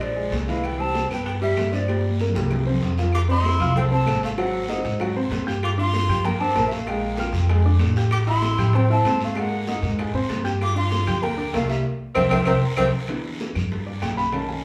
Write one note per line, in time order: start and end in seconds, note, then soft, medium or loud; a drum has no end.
0.00 0.29 A#1 medium
0.00 0.32 F3 medium
0.00 0.10 D4 medium
0.00 0.11 D5 medium
0.00 0.33 D5 medium
0.00 high bongo medium
0.00 high conga soft
0.00 long guiro medium
0.00 claves medium
0.16 0.42 G#3 medium
0.16 0.42 G#4 medium
0.16 high bongo soft
0.16 high conga soft
0.31 1.04 C2 medium
0.31 high bongo medium
0.31 low bongo medium
0.31 high conga medium
0.31 short guiro medium
0.48 0.74 E3 medium
0.48 0.65 G#3 medium
0.48 0.74 E4 medium
0.48 0.67 F5 medium
0.48 high bongo soft
0.48 high conga medium
0.48 short guiro medium
0.63 0.79 B3 medium
0.63 0.82 G5 medium
0.63 high bongo medium
0.63 long guiro medium
0.63 claves medium
0.78 1.05 G3 medium
0.78 1.10 C4 medium
0.78 1.05 G4 medium
0.78 1.11 A5 loud
0.78 high bongo soft
0.78 high conga soft
0.95 high bongo medium
0.95 high conga medium
0.95 short guiro medium
1.09 1.53 G2 medium
1.09 1.25 B3 medium
1.09 1.37 B3 medium
1.09 1.36 B4 medium
1.09 1.26 G5 medium
1.09 high conga soft
1.09 short guiro medium
1.09 claves medium
1.26 1.33 B3 medium
1.26 1.33 G5 medium
1.26 high bongo medium
1.26 high conga soft
1.26 long guiro medium
1.41 1.74 G3 medium
1.41 1.67 G3 medium
1.41 1.67 G4 medium
1.41 1.77 E5 medium
1.41 high bongo soft
1.41 high conga soft
1.57 2.29 G2 medium
1.57 high bongo medium
1.57 low bongo medium
1.57 high conga medium
1.57 short guiro medium
1.57 claves medium
1.72 2.04 F3 medium
1.72 1.86 D4 medium
1.72 1.85 D5 medium
1.72 2.05 D5 medium
1.72 high bongo soft
1.72 high conga medium
1.72 short guiro medium
1.88 2.14 G3 medium
1.88 2.14 G4 medium
1.88 high bongo medium
1.88 high conga medium
1.88 long guiro medium
1.88 claves medium
1.99 high conga medium
2.05 high bongo soft
2.09 high conga loud
2.20 2.33 A#3 medium
2.20 2.33 A#4 medium
2.20 high bongo medium
2.20 short guiro medium
2.30 low conga medium
2.34 2.78 C2 medium
2.34 2.61 G4 medium
2.34 2.61 G5 medium
2.34 high bongo medium
2.34 short guiro medium
2.40 high conga loud
2.50 high bongo medium
2.50 low conga medium
2.50 long guiro medium
2.50 claves medium
2.62 low conga medium
2.66 2.92 C4 medium
2.66 2.92 C5 medium
2.66 low bongo medium
2.72 low conga medium
2.82 3.54 F2 medium
2.82 low bongo medium
2.82 low conga medium
2.82 short guiro medium
2.98 3.11 F3 medium
2.98 3.11 F4 medium
2.98 low bongo medium
2.98 short guiro medium
3.03 low conga medium
3.13 3.21 F4 medium
3.13 3.21 D6 loud
3.13 high bongo medium
3.13 long guiro medium
3.13 claves medium
3.28 3.54 C4 medium
3.28 3.74 E4 loud
3.28 3.55 C5 medium
3.28 3.55 C6 medium
3.28 3.73 C6 loud
3.28 high bongo soft
3.28 high conga soft
3.43 high bongo medium
3.43 high conga medium
3.43 short guiro medium
3.59 4.04 C2 medium
3.59 3.73 F4 medium
3.59 3.74 F5 medium
3.59 3.74 F6 medium
3.59 high conga soft
3.59 low conga medium
3.59 short guiro medium
3.59 claves medium
3.74 3.88 A3 medium
3.74 3.84 C4 medium
3.74 3.89 A4 medium
3.74 3.83 G5 medium
3.74 3.89 A5 medium
3.74 high bongo medium
3.74 high conga soft
3.74 low conga medium
3.74 long guiro medium
3.90 4.04 C4 medium
3.90 4.21 C4 medium
3.90 4.04 C5 medium
3.90 4.21 A5 medium
3.90 4.04 C6 medium
3.90 high bongo soft
3.90 high conga soft
4.06 4.79 G#1 medium
4.06 4.32 A3 medium
4.06 4.32 A4 medium
4.06 4.32 A5 medium
4.06 high bongo medium
4.06 low bongo medium
4.06 high conga medium
4.06 short guiro medium
4.06 claves medium
4.21 4.30 A3 medium
4.21 4.31 F5 medium
4.21 high bongo soft
4.21 high conga medium
4.21 short guiro medium
4.37 4.63 F#3 medium
4.37 4.67 C4 medium
4.37 4.64 F#4 medium
4.37 4.64 F#5 medium
4.37 4.68 F#5 medium
4.37 high bongo medium
4.37 long guiro medium
4.37 claves medium
4.54 high bongo soft
4.54 high conga soft
4.68 4.98 C4 medium
4.68 4.95 D#4 medium
4.68 4.95 D#5 medium
4.68 4.99 F#5 medium
4.68 4.95 D#6 medium
4.68 high bongo medium
4.68 high conga medium
4.68 short guiro medium
4.85 5.28 G#2 loud
4.85 short guiro medium
5.00 5.13 F#3 medium
5.00 5.13 F#4 medium
5.00 5.14 F#5 medium
5.00 high bongo medium
5.00 high conga soft
5.00 long guiro medium
5.00 claves medium
5.15 5.42 C4 medium
5.15 5.42 C5 medium
5.15 5.42 C6 medium
5.15 high conga soft
5.31 6.04 G2 medium
5.31 high bongo medium
5.31 low bongo medium
5.31 high conga medium
5.31 short guiro medium
5.47 5.72 G4 medium
5.47 5.72 G5 medium
5.47 5.73 G6 medium
5.47 high bongo soft
5.47 high conga medium
5.47 short guiro medium
5.63 5.71 F4 medium
5.63 5.71 D6 loud
5.63 high bongo medium
5.63 high conga soft
5.63 long guiro medium
5.63 claves medium
5.78 6.04 D4 medium
5.78 6.28 F4 loud
5.78 6.04 D5 medium
5.78 6.27 C6 loud
5.78 6.04 D6 medium
5.78 high bongo soft
5.78 high conga soft
5.94 high bongo medium
5.94 high conga loud
5.94 short guiro medium
6.09 6.52 G2 medium
6.09 6.22 G4 medium
6.09 6.22 G5 medium
6.09 6.22 G6 medium
6.09 high conga soft
6.09 low conga medium
6.09 short guiro medium
6.09 claves medium
6.24 6.37 A#3 medium
6.24 6.42 A#3 medium
6.24 6.38 A#4 medium
6.24 6.42 G5 loud
6.24 6.38 A#5 medium
6.24 high bongo medium
6.24 high conga soft
6.24 low conga medium
6.24 long guiro medium
6.40 6.68 C4 medium
6.40 6.54 D4 medium
6.40 6.54 D5 medium
6.40 6.67 A5 medium
6.40 6.54 D6 medium
6.40 high bongo soft
6.40 high conga soft
6.55 7.28 A#1 medium
6.55 6.82 A#3 medium
6.55 6.82 A#4 medium
6.55 6.83 A#5 medium
6.55 high bongo medium
6.55 low bongo medium
6.55 high conga medium
6.55 short guiro medium
6.55 claves medium
6.67 6.73 G3 soft
6.67 6.73 E5 medium
6.67 high conga medium
6.72 6.88 A3 medium
6.72 6.90 F5 medium
6.72 high bongo soft
6.72 short guiro medium
6.87 7.13 G#3 medium
6.87 7.17 A#3 medium
6.87 7.13 G#4 medium
6.87 7.14 F5 medium
6.87 7.17 G5 medium
6.87 high bongo medium
6.87 high conga soft
6.87 long guiro medium
6.87 claves medium
7.02 high bongo soft
7.02 high conga soft
7.17 7.47 A#3 medium
7.17 7.44 F4 medium
7.17 7.44 F5 medium
7.17 7.47 G5 medium
7.17 7.45 F6 medium
7.17 high bongo medium
7.17 high conga loud
7.17 short guiro medium
7.32 7.77 F2 loud
7.32 high conga soft
7.32 short guiro medium
7.48 7.62 G#3 medium
7.48 7.63 G#4 medium
7.48 7.63 G#5 medium
7.48 high bongo medium
7.48 high conga soft
7.48 long guiro medium
7.48 claves medium
7.64 7.91 D4 medium
7.64 7.91 D5 medium
7.64 7.91 D6 medium
7.64 high conga soft
7.79 8.52 A1 medium
7.79 high bongo medium
7.79 low bongo medium
7.79 high conga medium
7.79 short guiro medium
7.95 8.22 G4 medium
7.95 8.22 G5 medium
7.95 8.22 G6 medium
7.95 high bongo soft
7.95 short guiro medium
8.11 8.19 G4 medium
8.11 8.18 D6 loud
8.11 high bongo medium
8.11 high conga soft
8.11 long guiro medium
8.11 claves medium
8.26 8.53 E4 medium
8.26 8.77 E4 loud
8.26 8.53 E5 medium
8.26 8.77 C6 loud
8.26 8.53 E6 medium
8.26 high bongo soft
8.26 high conga soft
8.42 high bongo medium
8.42 high conga medium
8.42 short guiro medium
8.58 9.01 A2 medium
8.58 8.71 G4 medium
8.58 8.71 G5 medium
8.58 8.72 G6 medium
8.58 high conga soft
8.58 low conga medium
8.58 short guiro medium
8.58 claves medium
8.73 8.87 C4 medium
8.73 8.90 C4 medium
8.73 8.87 C5 medium
8.73 8.90 G5 medium
8.73 8.88 C6 medium
8.73 high bongo medium
8.73 high conga soft
8.73 low conga medium
8.73 long guiro medium
8.89 9.19 C4 medium
8.89 9.03 E4 medium
8.89 9.03 E5 medium
8.89 9.19 A5 medium
8.89 9.03 E6 medium
8.89 high bongo soft
8.89 high conga soft
9.04 9.77 G#2 medium
9.04 9.31 C4 medium
9.04 9.31 C5 medium
9.04 9.32 C6 medium
9.04 high bongo medium
9.04 low bongo medium
9.04 high conga medium
9.04 short guiro medium
9.04 claves medium
9.21 9.40 A3 medium
9.21 9.41 F5 medium
9.21 high bongo soft
9.21 high conga medium
9.21 short guiro medium
9.36 9.62 G#3 medium
9.36 9.68 A#3 medium
9.36 9.62 G#4 medium
9.36 9.62 G#5 medium
9.36 high bongo medium
9.36 high conga soft
9.36 long guiro medium
9.36 claves medium
9.40 9.69 F#5 medium
9.52 high bongo soft
9.52 high conga soft
9.67 9.97 A#3 medium
9.67 9.93 D#4 medium
9.67 9.93 D#5 medium
9.67 9.97 F#5 medium
9.67 9.94 D#6 medium
9.67 high bongo medium
9.67 high conga loud
9.67 short guiro medium
9.82 10.11 G#2 loud
9.82 high conga soft
9.82 short guiro medium
9.99 10.11 G#3 medium
9.99 10.12 G#4 medium
9.99 10.12 G#5 medium
9.99 high bongo medium
9.99 high conga soft
9.99 long guiro medium
9.99 claves medium
10.13 10.28 G#2 medium
10.13 10.40 C4 medium
10.13 10.40 C5 medium
10.13 10.40 C6 medium
10.13 high conga soft
10.29 11.02 G2 medium
10.29 high bongo medium
10.29 low bongo medium
10.29 high conga medium
10.29 short guiro medium
10.44 10.70 G4 medium
10.44 10.70 G5 medium
10.44 10.70 G6 medium
10.44 high bongo soft
10.44 high conga medium
10.44 short guiro medium
10.61 10.76 F4 medium
10.61 10.76 D6 loud
10.61 high bongo medium
10.61 high conga soft
10.61 long guiro medium
10.61 claves medium
10.76 11.01 D4 medium
10.76 11.24 F4 loud
10.76 11.02 D5 medium
10.76 11.24 C6 loud
10.76 11.01 D6 medium
10.76 high bongo soft
10.76 high conga soft
10.92 high bongo medium
10.92 high conga medium
10.92 short guiro medium
11.06 11.50 D2 medium
11.06 11.20 G4 medium
11.06 11.20 G5 medium
11.06 11.20 G6 medium
11.06 high conga soft
11.06 low conga medium
11.06 short guiro medium
11.06 claves medium
11.22 11.35 A#3 medium
11.22 11.53 A#3 medium
11.22 11.35 A#4 medium
11.22 11.54 G5 loud
11.22 11.35 A#5 medium
11.22 high bongo medium
11.22 high conga soft
11.22 long guiro medium
11.37 11.50 D4 medium
11.37 11.50 D5 medium
11.37 11.51 D6 medium
11.37 high bongo soft
11.37 high conga soft
11.53 11.82 C2 medium
11.53 11.69 A3 medium
11.53 11.79 A#3 medium
11.53 11.79 A#4 medium
11.53 11.71 F5 medium
11.53 11.80 A#5 medium
11.53 high bongo medium
11.53 low bongo medium
11.53 high conga medium
11.53 short guiro medium
11.53 claves medium
11.68 11.84 G3 medium
11.68 11.85 E5 medium
11.68 high bongo soft
11.68 high conga medium
11.68 short guiro medium
12.15 12.27 C2 medium
12.15 12.22 C4 medium
12.15 12.26 A#4 medium
12.15 12.25 C5 medium
12.15 12.26 E5 loud
12.15 12.26 G5 medium
12.15 low bongo loud
12.15 low conga loud
12.15 long guiro loud
12.15 claves loud
12.30 12.43 C2 medium
12.30 12.38 C4 medium
12.30 12.41 A#4 medium
12.30 12.41 C5 medium
12.30 12.41 E5 loud
12.30 12.41 G5 loud
12.30 low bongo loud
12.30 low conga loud
12.30 long guiro loud
12.30 claves loud
12.45 12.58 C2 medium
12.45 12.53 C4 medium
12.45 12.57 A#4 loud
12.45 12.57 C5 loud
12.45 12.57 E5 medium
12.45 12.57 G5 medium
12.45 low bongo loud
12.45 low conga loud
12.45 long guiro loud
12.45 claves loud
12.77 12.89 C2 loud
12.77 12.85 C4 loud
12.77 12.88 A#4 medium
12.77 12.88 C5 medium
12.77 12.88 E5 medium
12.77 12.88 G5 loud
12.77 low bongo loud
12.77 low conga loud
12.77 long guiro loud
12.77 claves loud
13.08 13.53 E3 medium
13.08 13.53 B3 soft
13.08 13.53 D4 medium
13.08 high bongo medium
13.08 high conga soft
13.08 long guiro medium
13.08 claves medium
13.24 high bongo soft
13.24 high conga soft
13.40 high bongo medium
13.40 high conga medium
13.40 short guiro medium
13.55 13.99 G2 medium
13.55 high conga soft
13.55 low conga medium
13.55 short guiro medium
13.55 claves medium
13.71 high bongo medium
13.71 high conga soft
13.71 long guiro medium
13.87 14.02 D5 medium
13.87 high bongo soft
13.87 high conga soft
14.02 14.64 B1 medium
14.02 14.17 G5 medium
14.02 high bongo medium
14.02 low bongo medium
14.02 high conga medium
14.02 short guiro medium
14.02 claves medium
14.17 14.33 B5 loud
14.17 high bongo soft
14.17 high conga medium
14.17 short guiro medium
14.32 14.64 D#3 medium
14.32 14.64 A3 medium
14.32 14.64 C#4 medium
14.32 14.48 A5 medium
14.32 high bongo medium
14.32 long guiro medium
14.32 claves medium
14.48 14.64 G#5 medium
14.48 high bongo soft
14.48 high conga soft